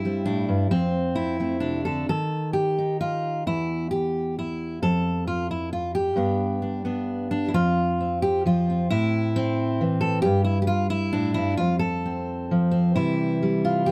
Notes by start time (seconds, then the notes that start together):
Already playing: G2 E4
0.05 G3 C4
0.25 A2 D4
0.49 G2
0.71 F2 C4
1.15 E4
1.40 A3 C4
1.60 C3 D4
1.85 D3 A4
2.09 D#3 A4
2.53 G4
2.78 D#4
3.01 F4
3.47 E2 E4
3.91 G4
4.39 E4
4.82 F2 A4
5.27 F4
5.51 E4
5.73 F4
5.95 G4
6.16 G2 B3 D4
6.62 D4
6.85 B3 D4
7.31 D4
7.48 E4
7.54 F2 F4
8.00 C4
8.22 G4
8.46 F3 F4
8.70 C4
8.90 A2 E4
9.36 C4
9.81 E3
10.01 A4
10.22 G2 G4
10.44 E4
10.62 G4
10.67 F4
10.90 E4
11.13 A2 D4
11.34 G2 E4
11.57 F2 F4
11.79 A4
12.06 C4
12.51 F3
12.71 C4
12.96 C3 E3 G3 E4
13.43 G3
13.65 F4
13.86 E3 G4